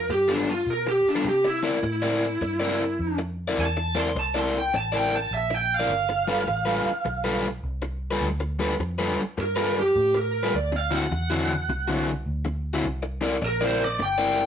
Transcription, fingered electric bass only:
0.09 0.66 G2 medium
0.66 1.02 B2 medium
1.04 muted fingered electric bass stroke soft
1.25 1.81 C3 medium
1.83 2.40 A2 medium
2.41 2.98 G2 medium
2.99 3.56 F2 medium
3.58 4.14 E2 medium
4.15 4.72 C2 medium
4.74 5.30 A1 medium
5.31 5.88 A#1 medium
5.88 6.45 G1 medium
6.47 6.82 A1 medium
6.85 muted fingered electric bass stroke soft
7.06 7.62 B1 medium
7.63 8.19 C2 medium
8.21 8.77 D2 medium
8.79 9.14 F2 medium
9.17 muted fingered electric bass stroke soft
9.37 9.93 G2 medium
9.96 10.51 A2 medium
10.54 11.09 D2 medium
11.11 11.67 E2 medium
11.68 12.25 C2 medium
12.26 12.82 D2 medium
12.84 13.40 C2 medium
13.42 13.98 A#1 medium
14.00 14.46 G1 medium

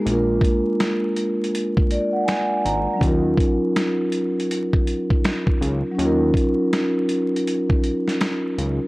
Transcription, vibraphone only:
0.00 2.94 G#3 medium
0.00 2.96 A#3 medium
0.05 2.97 D4 medium
0.05 2.99 F4 medium
0.11 3.01 A#4 medium
1.91 2.13 D5 medium
2.13 2.25 F#5 medium
2.25 2.61 G#5 medium
2.65 2.99 A#5 medium
2.94 5.90 F#3 medium
2.94 5.91 C#4 medium
3.00 5.93 D#4 medium
3.00 5.95 F4 medium
3.07 5.96 A#4 medium
5.92 8.87 F#3 medium
5.92 8.88 C#4 medium
5.98 8.88 D#4 medium
5.98 8.88 F4 medium
6.05 8.88 A#4 medium

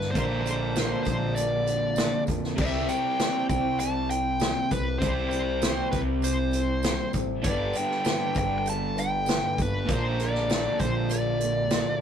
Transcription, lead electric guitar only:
0.00 0.11 B4 medium
0.11 0.40 C5 medium
0.41 1.02 C5 medium
1.03 1.36 C5 medium
1.35 2.23 D5 medium
2.61 2.91 E5 medium
2.89 3.46 G5 loud
3.50 3.79 G5 medium
3.80 4.10 A5 loud
4.10 4.73 G5 loud
4.71 4.99 B4 medium
4.99 5.28 C5 medium
5.29 5.88 C5 loud
5.91 6.00 B4 medium
6.24 7.11 C5 medium
7.44 7.76 D5 loud
7.77 8.37 G5 loud
8.38 8.57 G5 loud
8.58 8.66 G5 medium
8.70 8.99 A5 loud
9.00 9.61 G5 loud
9.62 9.91 B4 medium
9.92 10.22 C5 medium
10.23 10.78 D5 loud
10.80 11.08 C5 medium
11.10 11.97 D5 medium

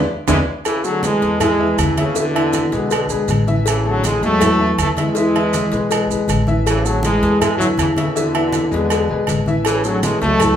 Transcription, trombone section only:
0.28 0.37 D3 loud
0.28 0.37 E3 loud
0.28 0.37 G#3 loud
0.66 0.84 C#3 medium
0.66 0.84 E3 loud
0.84 1.04 D3 medium
0.84 1.03 F#3 loud
1.04 1.41 E3 medium
1.04 1.40 G#3 loud
1.41 1.77 E3 medium
1.41 1.76 G#3 loud
1.80 1.97 C#3 medium
1.80 1.98 E3 loud
1.99 2.17 A2 medium
1.99 2.17 C#3 medium
2.18 2.69 B2 medium
2.18 2.70 D3 loud
2.75 3.26 B2 medium
2.75 3.26 D3 medium
3.68 3.84 C#3 medium
3.68 3.84 E3 medium
3.86 4.04 D3 medium
3.86 4.05 F#3 loud
4.05 4.22 E3 medium
4.05 4.22 G#3 loud
4.24 4.76 F#3 medium
4.24 4.75 A3 loud
4.80 4.89 E3 medium
4.80 4.88 A3 loud
4.98 6.25 E3 medium
4.98 6.25 G#3 loud
6.66 6.84 C#3 medium
6.66 6.83 E3 loud
6.85 7.04 D3 medium
6.85 7.03 F#3 loud
7.04 7.39 E3 medium
7.04 7.38 G#3 loud
7.41 7.59 E3 medium
7.41 7.58 G#3 loud
7.58 7.69 D3 medium
7.58 7.67 F#3 loud
7.78 7.88 C#3 medium
7.78 7.86 E3 loud
7.95 8.15 A2 medium
7.95 8.13 C#3 medium
8.14 8.72 B2 medium
8.14 8.70 D3 loud
8.71 9.25 B2 medium
8.71 9.24 D3 medium
9.66 9.83 C#3 medium
9.66 9.83 E3 loud
9.84 10.03 D3 medium
9.84 10.03 F#3 loud
10.03 10.21 E3 medium
10.03 10.20 G#3 loud
10.21 10.56 F#3 medium
10.21 10.56 A3 loud

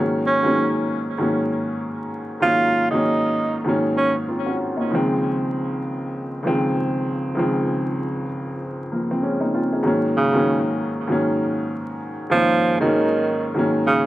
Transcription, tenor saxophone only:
0.27 0.73 C#4 medium
2.42 2.89 F4 loud
2.91 3.62 D#4 medium
3.97 4.14 C#4 medium
10.17 10.63 C#3 medium
12.32 12.79 F3 loud
12.81 13.52 D#3 medium
13.87 14.03 C#3 medium

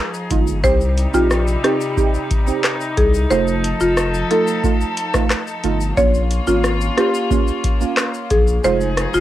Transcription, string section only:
0.00 0.61 F3 medium
0.00 0.61 D#4 medium
0.00 0.61 G#4 medium
0.64 3.28 C3 medium
0.64 3.28 G3 medium
0.64 5.93 D#4 medium
3.31 5.95 F3 medium
3.31 5.95 A4 medium
5.97 8.61 A#3 medium
5.97 8.61 C#4 medium
5.97 8.62 F4 medium
8.64 9.20 F3 medium
8.64 9.20 D#4 medium
8.64 9.20 G#4 medium

